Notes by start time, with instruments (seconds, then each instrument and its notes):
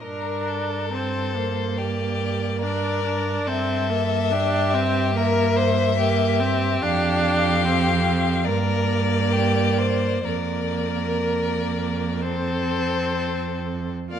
0.03 cello G2, viola D4, violin A#4
0.49 violin A4
0.93 viola C4, violin C5
1.36 viola A#3
1.77 violin G4 D5
2.61 viola D4, violin A#4 D5
3.05 viola D4
3.47 cello G2, viola C4, violin A4 E5
3.90 viola A#3
4.31 viola D4, violin G4
4.74 viola C4
5.15 viola A#3, violin A#4 E5
5.56 violin C5
5.97 viola A#3, violin G4
6.40 viola C4
6.82 cello F2, viola D4, violin F5
7.64 viola C4
8.45 cello G2, viola A#3, violin A#4 D5
9.32 violin G4
9.78 violin C5
10.25 cello F2, viola A#3, violin A#4 D5
12.21 viola C4, violin A4 C5
14.11 viola A#3, cello F4, violin D5 F5